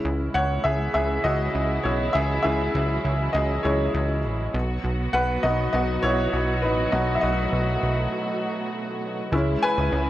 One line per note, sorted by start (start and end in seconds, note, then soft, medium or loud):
0.00 4.50 C#3 medium
0.00 4.50 E3 medium
0.00 0.60 G#3 soft
0.00 2.12 G#3 medium
0.00 0.60 C#4 soft
0.00 0.61 E4 medium
0.00 4.50 E4 medium
0.05 0.29 C#2 medium
0.34 0.59 C#2 loud
0.34 0.63 C#5 medium
0.34 0.65 F#5 medium
0.64 0.89 C#2 medium
0.64 0.93 G#4 medium
0.64 0.93 E5 medium
0.94 1.19 C#2 medium
0.94 1.23 G#4 medium
0.94 1.25 E5 medium
1.24 1.49 C#2 medium
1.24 1.81 F#4 medium
1.24 1.86 D#5 medium
1.55 1.79 C#2 medium
1.83 2.09 B1 medium
1.83 2.13 E4 medium
1.83 2.12 C#5 medium
2.13 2.39 C#2 loud
2.13 4.52 F#3 medium
2.13 2.43 G#4 medium
2.13 2.41 E5 medium
2.43 2.69 C#2 medium
2.43 3.30 G#3 medium
2.43 3.30 C#4 soft
2.43 3.30 E4 medium
2.43 3.30 G#4 medium
2.43 3.30 E5 medium
2.75 2.99 C#2 loud
3.05 3.29 C#2 medium
3.33 3.59 C#2 loud
3.33 3.63 G#4 medium
3.33 3.65 D#5 medium
3.63 3.89 C#2 loud
3.63 3.91 G#3 soft
3.63 3.91 C#4 soft
3.63 4.21 E4 medium
3.63 4.20 C#5 medium
3.94 4.26 C#2 loud
4.24 4.49 A1 medium
4.54 4.79 B1 loud
4.54 9.29 B2 medium
4.54 9.29 F#3 medium
4.54 6.92 B3 medium
4.54 9.29 F#4 medium
4.84 5.09 B1 medium
5.13 5.38 B1 loud
5.13 5.42 B4 medium
5.13 5.44 F#5 medium
5.43 5.68 B1 medium
5.43 6.29 F#3 soft
5.43 6.30 B3 soft
5.43 6.30 D#4 soft
5.43 5.72 F#4 medium
5.43 5.71 D#5 medium
5.73 5.98 B1 loud
5.73 6.02 F#4 medium
5.73 6.04 D#5 medium
6.03 6.28 B1 loud
6.03 6.60 E4 medium
6.03 6.65 C#5 medium
6.33 6.64 B1 medium
6.62 6.88 A1 medium
6.62 6.92 D#4 medium
6.62 6.91 B4 medium
6.92 7.18 B1 loud
6.92 9.28 F#3 medium
6.92 9.31 A3 medium
6.92 9.29 B3 soft
6.92 9.29 D#4 medium
6.92 7.15 F#4 medium
6.92 7.17 D#5 medium
7.15 7.23 E5 medium
7.21 7.48 B1 loud
7.21 7.79 F#4 medium
7.21 7.78 D#5 medium
7.53 7.77 B1 medium
7.83 8.08 B1 medium
9.32 9.57 C#2 loud
9.32 10.10 C#3 medium
9.32 10.10 E3 medium
9.32 9.72 G#3 medium
9.32 10.10 G#3 medium
9.32 9.72 C#4 soft
9.32 10.10 E4 medium
9.32 9.73 E4 medium
9.63 10.10 B4 medium
9.63 10.10 G#5 medium
9.77 9.90 C#2 medium
9.92 10.10 C#2 medium